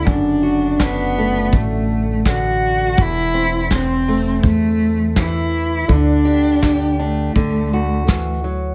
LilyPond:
<<
  \new Staff \with { instrumentName = "Cello" } { \time 4/4 \key d \mixolydian \tempo 4 = 82 d'4 b4 a4 fis'4 | e'4 c'4 a4 e'4 | d'4. a2 r8 | }
  \new Staff \with { instrumentName = "Steel-string acoustic guitar" } { \time 4/4 \key d \mixolydian << { r8 fis'8 d'8 a2~ a8 | r8 c'8 c'8 a2~ a8 | r8 g'8 g'8 d'8 r8 fis'4. | } \\ { <fis, d>2. d4 | e,2. e4 | d2 d4 e8 fis8 | } >> }
  \new Staff \with { instrumentName = "Upright bass" } { \clef bass \time 4/4 \key d \mixolydian fis,,2 a,,2 | e,,2 e,2 | d,2 d,2 | }
  \new DrumStaff \with { instrumentName = "Drums" } \drummode { \time 4/4 bd4 <bd sn>4 bd4 <bd sn>4 | bd4 <bd sn>4 bd4 <bd sn>4 | bd4 <bd sn>4 bd4 <bd sn>4 | }
>>